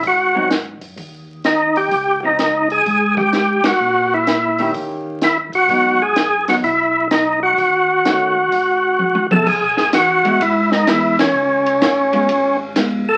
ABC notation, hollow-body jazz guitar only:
X:1
M:4/4
L:1/8
Q:"Swing" 1/4=127
K:G#m
V:1 name="Hollow-body jazz guitar"
z [F,^B,D] z6 | z [^E,^B,D] z6 | z3 [D,A,C=G]3 z2 | [F,B,D] z2 [F,B,D] z4 |
z2 [D,=A,CF] z4 [B,EG] | [K:C#m] z3 [G,B,E] z2 [G,B,E] z | z3 [G,B,^E] z2 [G,B,E] z |]